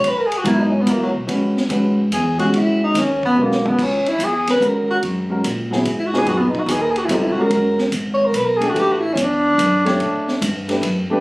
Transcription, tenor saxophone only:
0, 0, Header, 1, 2, 480
1, 0, Start_track
1, 0, Tempo, 414938
1, 53, Time_signature, 3, 2, 24, 8
1, 12960, End_track
2, 0, Start_track
2, 0, Title_t, "Tenor saxophone"
2, 0, Program_c, 0, 66
2, 87, Note_on_c, 0, 71, 92
2, 209, Note_on_c, 0, 70, 86
2, 226, Note_off_c, 0, 71, 0
2, 304, Note_on_c, 0, 68, 88
2, 321, Note_off_c, 0, 70, 0
2, 434, Note_on_c, 0, 66, 86
2, 451, Note_off_c, 0, 68, 0
2, 548, Note_on_c, 0, 64, 90
2, 565, Note_off_c, 0, 66, 0
2, 695, Note_on_c, 0, 63, 80
2, 712, Note_off_c, 0, 64, 0
2, 804, Note_on_c, 0, 61, 82
2, 821, Note_off_c, 0, 63, 0
2, 929, Note_on_c, 0, 59, 80
2, 946, Note_off_c, 0, 61, 0
2, 1043, Note_on_c, 0, 58, 68
2, 1061, Note_off_c, 0, 59, 0
2, 1175, Note_off_c, 0, 58, 0
2, 1182, Note_on_c, 0, 54, 81
2, 1275, Note_off_c, 0, 54, 0
2, 2472, Note_on_c, 0, 68, 83
2, 2759, Note_off_c, 0, 68, 0
2, 2771, Note_on_c, 0, 66, 99
2, 2971, Note_on_c, 0, 64, 102
2, 2988, Note_off_c, 0, 66, 0
2, 3270, Note_off_c, 0, 64, 0
2, 3282, Note_on_c, 0, 63, 89
2, 3458, Note_on_c, 0, 61, 86
2, 3475, Note_off_c, 0, 63, 0
2, 3753, Note_off_c, 0, 61, 0
2, 3762, Note_on_c, 0, 59, 91
2, 3960, Note_on_c, 0, 58, 79
2, 3977, Note_off_c, 0, 59, 0
2, 4248, Note_on_c, 0, 59, 87
2, 4265, Note_off_c, 0, 58, 0
2, 4430, Note_on_c, 0, 61, 88
2, 4447, Note_off_c, 0, 59, 0
2, 4723, Note_on_c, 0, 64, 97
2, 4740, Note_off_c, 0, 61, 0
2, 4898, Note_on_c, 0, 68, 101
2, 4915, Note_off_c, 0, 64, 0
2, 5193, Note_off_c, 0, 68, 0
2, 5211, Note_on_c, 0, 71, 103
2, 5386, Note_on_c, 0, 70, 86
2, 5403, Note_off_c, 0, 71, 0
2, 5665, Note_off_c, 0, 70, 0
2, 5672, Note_on_c, 0, 66, 107
2, 5762, Note_off_c, 0, 66, 0
2, 6932, Note_on_c, 0, 64, 77
2, 7014, Note_on_c, 0, 66, 102
2, 7031, Note_off_c, 0, 64, 0
2, 7153, Note_on_c, 0, 68, 101
2, 7170, Note_off_c, 0, 66, 0
2, 7272, Note_on_c, 0, 66, 107
2, 7289, Note_off_c, 0, 68, 0
2, 7387, Note_on_c, 0, 59, 64
2, 7404, Note_off_c, 0, 66, 0
2, 7504, Note_on_c, 0, 63, 97
2, 7521, Note_off_c, 0, 59, 0
2, 7626, Note_on_c, 0, 66, 89
2, 7643, Note_off_c, 0, 63, 0
2, 7763, Note_on_c, 0, 68, 96
2, 7780, Note_off_c, 0, 66, 0
2, 7887, Note_on_c, 0, 70, 96
2, 7905, Note_off_c, 0, 68, 0
2, 7993, Note_on_c, 0, 68, 91
2, 8010, Note_off_c, 0, 70, 0
2, 8075, Note_on_c, 0, 66, 92
2, 8092, Note_off_c, 0, 68, 0
2, 8153, Note_on_c, 0, 64, 84
2, 8170, Note_off_c, 0, 66, 0
2, 8245, Note_on_c, 0, 63, 77
2, 8263, Note_off_c, 0, 64, 0
2, 8367, Note_on_c, 0, 64, 81
2, 8385, Note_off_c, 0, 63, 0
2, 8465, Note_on_c, 0, 66, 100
2, 8483, Note_off_c, 0, 64, 0
2, 8581, Note_on_c, 0, 70, 94
2, 8598, Note_off_c, 0, 66, 0
2, 9076, Note_off_c, 0, 70, 0
2, 9417, Note_on_c, 0, 73, 98
2, 9550, Note_on_c, 0, 70, 93
2, 9567, Note_off_c, 0, 73, 0
2, 9674, Note_on_c, 0, 71, 80
2, 9691, Note_off_c, 0, 70, 0
2, 9779, Note_on_c, 0, 70, 91
2, 9796, Note_off_c, 0, 71, 0
2, 9914, Note_on_c, 0, 68, 103
2, 9932, Note_off_c, 0, 70, 0
2, 10058, Note_on_c, 0, 66, 80
2, 10076, Note_off_c, 0, 68, 0
2, 10172, Note_on_c, 0, 67, 115
2, 10190, Note_off_c, 0, 66, 0
2, 10311, Note_on_c, 0, 66, 79
2, 10328, Note_off_c, 0, 67, 0
2, 10415, Note_on_c, 0, 64, 104
2, 10432, Note_off_c, 0, 66, 0
2, 10565, Note_on_c, 0, 61, 77
2, 10582, Note_off_c, 0, 64, 0
2, 10674, Note_on_c, 0, 62, 103
2, 10691, Note_off_c, 0, 61, 0
2, 12083, Note_off_c, 0, 62, 0
2, 12960, End_track
0, 0, End_of_file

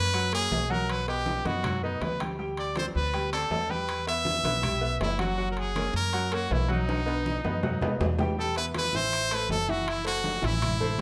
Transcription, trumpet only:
0, 0, Header, 1, 2, 480
1, 0, Start_track
1, 0, Tempo, 374065
1, 1138, Time_signature, 4, 2, 24, 8
1, 14131, End_track
2, 0, Start_track
2, 0, Title_t, "Trumpet"
2, 0, Program_c, 0, 56
2, 0, Note_on_c, 0, 71, 112
2, 392, Note_off_c, 0, 71, 0
2, 441, Note_on_c, 0, 68, 107
2, 917, Note_on_c, 0, 70, 95
2, 936, Note_off_c, 0, 68, 0
2, 1163, Note_on_c, 0, 71, 94
2, 1183, Note_off_c, 0, 70, 0
2, 1386, Note_off_c, 0, 71, 0
2, 1393, Note_on_c, 0, 67, 93
2, 1878, Note_on_c, 0, 66, 93
2, 1897, Note_off_c, 0, 67, 0
2, 2349, Note_off_c, 0, 66, 0
2, 2357, Note_on_c, 0, 63, 75
2, 2594, Note_on_c, 0, 71, 83
2, 2613, Note_off_c, 0, 63, 0
2, 2827, Note_off_c, 0, 71, 0
2, 3324, Note_on_c, 0, 74, 85
2, 3536, Note_off_c, 0, 74, 0
2, 3571, Note_on_c, 0, 72, 95
2, 3672, Note_off_c, 0, 72, 0
2, 3800, Note_on_c, 0, 71, 102
2, 4238, Note_off_c, 0, 71, 0
2, 4272, Note_on_c, 0, 69, 92
2, 4755, Note_on_c, 0, 71, 102
2, 4775, Note_off_c, 0, 69, 0
2, 5228, Note_off_c, 0, 71, 0
2, 5241, Note_on_c, 0, 76, 106
2, 6380, Note_off_c, 0, 76, 0
2, 6446, Note_on_c, 0, 64, 90
2, 6657, Note_off_c, 0, 64, 0
2, 6678, Note_on_c, 0, 66, 93
2, 7032, Note_off_c, 0, 66, 0
2, 7073, Note_on_c, 0, 70, 67
2, 7169, Note_on_c, 0, 68, 103
2, 7188, Note_off_c, 0, 70, 0
2, 7635, Note_off_c, 0, 68, 0
2, 7650, Note_on_c, 0, 70, 102
2, 8133, Note_on_c, 0, 66, 88
2, 8152, Note_off_c, 0, 70, 0
2, 8375, Note_on_c, 0, 64, 92
2, 8394, Note_off_c, 0, 66, 0
2, 8598, Note_off_c, 0, 64, 0
2, 8629, Note_on_c, 0, 63, 82
2, 10233, Note_off_c, 0, 63, 0
2, 10778, Note_on_c, 0, 69, 95
2, 10984, Note_off_c, 0, 69, 0
2, 11005, Note_on_c, 0, 71, 100
2, 11107, Note_off_c, 0, 71, 0
2, 11265, Note_on_c, 0, 71, 114
2, 11493, Note_on_c, 0, 72, 125
2, 11512, Note_off_c, 0, 71, 0
2, 11988, Note_on_c, 0, 71, 107
2, 12007, Note_off_c, 0, 72, 0
2, 12204, Note_off_c, 0, 71, 0
2, 12212, Note_on_c, 0, 69, 99
2, 12449, Note_on_c, 0, 66, 95
2, 12468, Note_off_c, 0, 69, 0
2, 12686, Note_on_c, 0, 64, 99
2, 12705, Note_off_c, 0, 66, 0
2, 12913, Note_off_c, 0, 64, 0
2, 12924, Note_on_c, 0, 66, 93
2, 13414, Note_on_c, 0, 64, 104
2, 13433, Note_off_c, 0, 66, 0
2, 14131, Note_off_c, 0, 64, 0
2, 14131, End_track
0, 0, End_of_file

